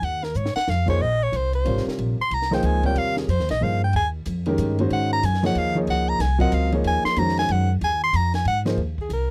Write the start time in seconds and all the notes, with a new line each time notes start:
0.02 D#2 F#5, ride
0.23 A#4, snare
0.34 G#2 C#5, hi-hat pedal
0.46 snare
0.56 F#5, muted upright bass stroke, snare
0.68 F2 F5, snare
0.86 F3 A#3 D#4 G#4 C5 C#5, kick, crash
1.00 A#1 D#5
1.23 C#5
1.32 C2, hi-hat pedal, ride
1.36 C5
1.53 C5, ride
1.64 G#1 C3 G3 F4 A#4 C#5, ride
1.77 snare
1.86 muted upright bass stroke, snare
1.98 A#1, ride
2.19 C6, muted upright bass stroke
2.31 C2 A#5, ride
2.42 snare
2.51 F3 A#3 D#4 G#4 C5 G5, snare
2.63 C#2 G#5, hi-hat pedal, ride
2.83 C3 G3 F4 A#4 C#5 G5, kick, ride
2.95 D#2 F5, ride
3.17 G#4, snare
3.28 F2 C5, hi-hat pedal, ride
3.40 D#2, snare
3.49 A#1 D#5, snare, ride
3.61 G2 F3 A#3 D#4 G#4 C5 F5
3.84 G5
3.93 D#2 G#5, ride
4.26 F2, hi-hat pedal, ride
4.46 D#3 G#3 C#4 G4 A#4, ride
4.58 G2, hi-hat pedal, ride
4.79 D#3 G#3 C#4 F#4 C5, ride
4.90 G#2 F#5, ride
5.13 A#5
5.23 F#2 G#5, hi-hat pedal, ride
5.34 snare
5.43 F3 A#3 D#4 G#4 C#5 F#5, snare, ride
5.55 D#2 F5, ride
5.75 F3 A#3 D#4 G#4 C#5
5.87 C#2 F#5, ride
6.09 A#5
6.19 C2 G#5, snare, hi-hat pedal, ride
6.38 F#3 C4 F4 A#4 D#5 F#5, kick, ride
6.52 C#2 F5, hi-hat pedal, ride
6.72 F3 A#3 D#4 G#4 C#5, ride
6.84 D#2 G#5, ride
7.04 C6, muted upright bass stroke, snare
7.16 F2 D#3 G#3 C#4 F#4 C5 A#5, hi-hat pedal, ride
7.28 snare
7.37 G#5, snare, ride
7.49 F#2 F#5, ride
7.81 D#2 G#5, ride
8.04 C6
8.13 F2 A#5, hi-hat pedal, ride
8.34 G#5, snare, ride
8.45 G#2 F#5, ride
8.65 F3 A#3 D#4 G#4 C5, snare, ride
8.77 D#2, ride
8.98 G#4, kick
9.09 C2 A#4, hi-hat pedal, ride